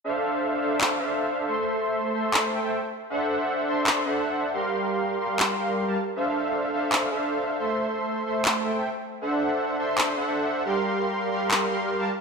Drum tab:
CP |----x---|----x---|----x---|----x---|

CP |----x---|----x---|----x---|----x---|